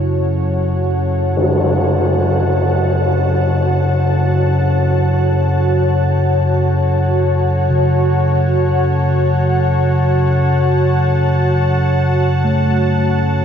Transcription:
0.00 13.45 F#2 medium
0.00 13.45 C#3 medium
0.00 13.45 F#4 medium
0.00 13.45 C#5 medium
0.00 13.45 F#5 medium
0.00 13.45 A5 medium
1.37 tam-tam medium
7.70 13.16 C#3 medium
12.44 13.45 A3 medium

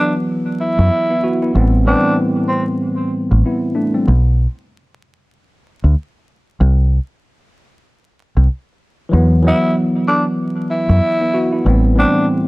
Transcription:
0.00 0.13 E3 medium
0.00 1.57 F#3 medium
0.00 1.11 B3 loud
0.00 0.14 D4 medium
0.60 1.51 E4 medium
0.79 0.89 F#2 loud
1.10 1.23 B3 medium
1.10 1.23 E4 medium
1.23 1.41 B3 medium
1.23 1.41 F#4 medium
1.42 1.56 B3 medium
1.42 1.72 E4 medium
1.53 1.93 A1 loud
1.53 1.76 A2 medium
1.53 1.76 E3 medium
1.53 1.77 G3 medium
1.53 1.77 B3 medium
1.58 1.78 C4 medium
1.84 2.66 A2 medium
1.84 2.67 E3 medium
1.84 2.67 G3 medium
1.84 2.68 B3 medium
1.84 2.15 D4 medium
1.89 2.68 C4 loud
2.48 2.65 C4 medium
3.31 3.41 A1 medium
3.46 3.75 B3 medium
3.46 3.75 E4 medium
3.75 3.93 A3 medium
3.75 3.93 D4 medium
3.94 4.07 G3 medium
3.94 4.07 C4 medium
4.08 4.46 B1 loud
5.84 5.94 D2 medium
6.61 6.98 C2 loud
8.37 8.47 C2 medium
9.09 9.51 E2 loud
9.09 9.33 E3 medium
9.09 9.34 F#3 medium
9.14 9.35 B3 medium
9.42 10.24 E3 medium
9.42 10.25 F#3 medium
9.47 10.26 B3 loud
9.47 9.75 E4 medium
10.08 10.24 D4 medium
10.71 11.61 E4 medium
10.89 10.99 F#2 loud
11.21 11.33 B3 medium
11.21 11.33 E4 medium
11.34 11.52 B3 medium
11.34 11.51 F#4 medium
11.52 11.66 B3 medium
11.52 11.82 E4 medium
11.64 12.04 A1 loud
11.64 11.86 A2 medium
11.64 11.87 E3 medium
11.64 11.87 G3 medium
11.64 11.88 B3 medium
11.68 11.88 C4 medium
11.94 12.48 A2 medium
11.94 12.48 E3 medium
11.94 12.48 G3 medium
11.94 12.48 B3 medium
11.99 12.48 C4 medium
11.99 12.26 D4 medium

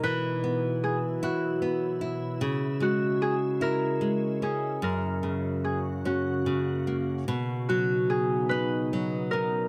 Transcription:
0.00 2.37 B2 medium
0.00 2.38 E3 medium
0.00 2.39 F#3 medium
0.00 4.77 E4 medium
0.00 0.46 F#4 medium
0.00 0.71 G#4 medium
0.00 2.08 B4 medium
0.44 1.61 B3 soft
0.84 0.94 G#4 medium
1.23 2.00 E4 medium
1.23 2.82 F#4 medium
1.62 2.39 B3 soft
2.01 2.40 E4 soft
2.41 9.68 C#3 medium
2.41 4.78 C#3 medium
2.41 4.79 G#3 medium
2.80 4.00 G#3 medium
2.80 5.26 F#4 medium
3.22 3.33 G#4 medium
3.61 4.78 E4 medium
3.61 4.83 A#4 medium
4.01 4.79 G#3 soft
4.42 4.81 C#4 soft
4.42 5.64 G#4 medium
4.82 7.24 F#2 medium
4.82 7.26 A#3 medium
4.82 7.26 F#4 medium
4.82 6.96 A#4 medium
5.23 6.45 C#3 soft
5.64 5.75 G#4 medium
6.05 7.25 C#4 medium
6.05 7.68 F#4 medium
6.46 7.26 C#3 soft
6.87 7.27 A#3 soft
7.28 9.68 B2 medium
7.28 9.68 B3 medium
7.28 9.68 D#4 medium
7.69 8.92 F#3 medium
7.69 9.68 F#4 medium
8.10 9.68 G#4 medium
8.49 9.68 D#4 medium
8.49 9.37 B4 medium
8.93 9.68 F#3 soft
9.31 9.68 B3 soft
9.31 9.68 A#4 medium

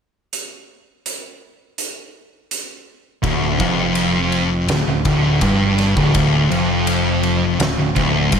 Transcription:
0.33 closed hi-hat medium
1.06 closed hi-hat medium
1.78 closed hi-hat medium
2.51 closed hi-hat medium
3.23 3.57 D1 medium
3.23 3.59 D2 loud
3.23 kick loud
3.23 ride medium
3.59 4.65 F1 medium
3.59 4.68 F2 loud
3.59 kick loud
3.59 ride medium
3.95 ride medium
4.32 ride medium
4.68 4.84 D1 medium
4.68 4.86 D2 medium
4.68 snare loud
4.68 ride medium
4.85 5.03 D1 medium
4.85 5.04 D2 medium
5.05 5.39 D1 medium
5.05 5.41 D2 medium
5.05 kick loud
5.05 ride medium
5.41 5.93 G1 medium
5.41 5.95 G2 loud
5.41 kick loud
5.41 ride medium
5.78 snare soft
5.78 ride medium
5.96 6.13 D1 medium
5.96 6.13 D2 medium
5.96 kick loud
6.14 6.49 D1 medium
6.14 6.50 D2 loud
6.14 kick loud
6.14 ride medium
6.51 7.56 F1 medium
6.51 7.59 F2 loud
6.51 ride medium
6.87 ride medium
7.23 ride medium
7.60 7.77 D1 medium
7.60 7.77 D2 medium
7.60 snare loud
7.60 ride medium
7.77 7.95 D1 medium
7.77 7.95 D2 medium
7.96 8.30 D1 medium
7.96 8.32 D2 medium
7.96 kick loud
7.96 ride medium
8.32 8.40 G1 medium
8.32 8.40 G2 loud
8.32 kick medium
8.32 ride medium

